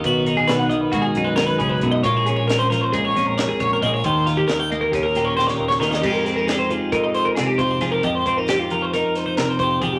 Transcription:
<<
  \new Staff \with { instrumentName = "Clean electric guitar" } { \time 9/8 \key f \minor \tempo 4. = 90 ces''8 bes'16 aes'16 ces''16 ges''16 ees''16 ces''16 ges'16 aes'8 ces''16 bes'16 ces''16 aes'16 ces''16 aes'16 ees''16 | des''8 aes'16 des''16 bes'16 c''16 bes'16 c''16 aes'16 des''8 bes'16 des''16 aes'16 des''16 bes'16 ees''16 des''16 | c''8 bes'16 g'16 bes'16 g''16 ees''16 bes'16 g'16 bes'8 des''16 c''16 des''16 bes'16 des''16 bes'16 ees''16 | g'16 bes'16 aes'16 bes'16 aes'16 c''16 aes'8 bes'16 ees''16 c''16 bes'16 aes'16 g'16 c''8 aes'16 bes'16 |
ees''16 c''16 c''16 bes'16 g'16 f'16 bes'16 c''16 bes'8 c''16 c''16 bes'16 c''16 c''8 aes'16 g'16 | }
  \new Staff \with { instrumentName = "Clean electric guitar" } { \time 9/8 \key f \minor << { ges'8 ees'4. aes8 ees'2 | f'16 aes'16 des'4. aes8 des'8 bes'4 aes'8 | g'8 f'16 g'4~ g'16 des'8 g'8 g'4 f'16 g'16 | <f aes ees' g'>8 c'16 ees'16 g'4 ees'4. f'16 g'16 f'16 g'16 |
g'8 c'16 ees'16 g'4 ees'4. g'8 g'8 | } \\ { <ces ees>4. ees4 ges,8 ees8 des8 ces8 | bes,4. f4 f,4. bes,8 | ees4. bes4 bes,4. ees8 | f,4. f4. c4 f,8 |
f,4. f4. c4 f,8 | } >> }
  \new Staff \with { instrumentName = "Picked electric bass" } { \clef bass \time 9/8 \key f \minor ces,4 ces,4 ces,4. ces,8 ges,8 | bes,,2 bes,,4. bes,,8 bes,,8 | ees,4 ees,4 ees,4. ees,8 ees,8 | f,2 f,4. f,8 f8 |
f,8 f,2 r4 f,8 f,8 | }
  \new DrumStaff \with { instrumentName = "Drums" } \drummode { \time 9/8 <hh bd>8 hh8 <hh sn>8 hh8 <hh bd>8 hh8 <hh sn>8 <hh bd>8 <hh bd>8 | <hh bd>8 hh8 <hh sn>8 <hh sn>8 <hh bd>8 <hh sn>8 <hh sn>8 <hh bd>8 <hh bd>8 | <hh bd>8 <hh sn>8 <hh sn>8 hh8 <hh bd sn>8 <hh sn>8 sn16 sn8 sn16 sn16 sn16 | <cymc bd>8 <hh sn>8 <hh sn>8 hh8 <hh bd>8 hh8 <hh sn>8 <hh bd>8 <hh bd sn>8 |
<hh bd>8 <hh bd>8 <hh sn>8 hh8 <hh sn>8 <hh sn>8 <hh sn>8 <hh bd>8 <hh bd>8 | }
>>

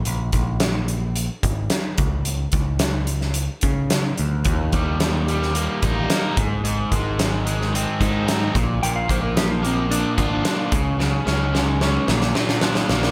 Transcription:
<<
  \new Staff \with { instrumentName = "Electric slide guitar" } { \time 4/4 \key bes \dorian \tempo 4 = 110 r1 | r1 | r1 | r1 |
g''16 f''16 c''16 bes'16 g'16 f'16 c'8 d'4 r4 | r1 | }
  \new Staff \with { instrumentName = "Overdriven electric guitar" } { \time 4/4 \key bes \dorian r1 | r1 | ees,8 g8 ees8 g8 bes8 ees'8 bes8 aes,8 | aes,8 aes8 ees8 aes8 c'8 ees'8 c'8 bes,8 |
bes,8 bes8 f8 bes8 d'8 f'8 d'8 des8 | des8 des'8 aes8 des'8 bes,8 f'8 d'8 bes8 | }
  \new Staff \with { instrumentName = "Overdriven electric guitar" } { \clef bass \time 4/4 \key bes \dorian r1 | r1 | ees,8 ees8 g8 ees8 g8 bes8 ees'8 aes,8 | aes,8 ees8 aes8 ees8 aes8 c'8 ees'8 bes,8 |
bes,8 f8 bes8 f8 bes8 d'8 f'8 des8 | des8 aes8 des'8 aes8 bes,8 d'8 f'8 bes8 | }
  \new Staff \with { instrumentName = "Picked electric bass" } { \clef bass \time 4/4 \key bes \dorian bes,,8 bes,,2 aes,,8 r8 des,8~ | des,8 des,2 des4 d,8 | ees,8 ees,2 a,,8 r8 aes,,8~ | aes,,8 aes,,2 aes,4 bes,,8 |
bes,,8 bes,,2 aes,,8 r8 des,8~ | des,8 des,4. bes,,8 bes,4 bes,,8 | }
  \new DrumStaff \with { instrumentName = "Drums" } \drummode { \time 4/4 hh8 <hh bd>8 <hh sn>8 hh8 hh8 <hh bd>8 <hh sn>8 <hh bd>8 | hh8 <hh bd>8 <hh sn>8 hh16 sn16 hh8 <hh bd>8 <hh sn>8 hh8 | <hh bd>8 <hh bd>8 <hh sn>8 hh16 sn16 hh8 <hh bd>8 <hh sn>8 <hh bd>8 | hh8 <hh bd>8 <hh sn>8 hh16 sn16 hh8 <hh bd>8 <hh sn>8 <hh bd>8 |
hh8 <hh bd>8 <hh sn>8 hh8 hh8 <hh bd>8 <hh sn>8 <hh bd>8 | sn8 sn8 sn8 sn8 sn16 sn16 sn16 sn16 sn16 sn16 sn16 sn16 | }
>>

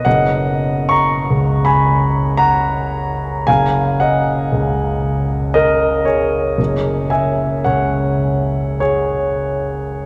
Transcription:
<<
  \new Staff \with { instrumentName = "Grand piano" } { \time 3/4 \key fis \mixolydian \tempo 4 = 55 \tuplet 3/2 { <dis'' fis''>4 <ais'' cis'''>8~ <ais'' cis'''>8 <gis'' b''>4 } <fis'' ais''>4 | <eis'' gis''>8 <dis'' fis''>4. <ais' dis''>8 <gis' cis''>8~ | <gis' cis''>8 <e'' gis''>8 <cis'' fis''>4 <gis' cis''>4 | }
  \new Staff \with { instrumentName = "Grand piano" } { \clef bass \time 3/4 \key fis \mixolydian fis,,4 cis,2 | fis,,4 cis,2 | fis,,4 cis,2 | }
>>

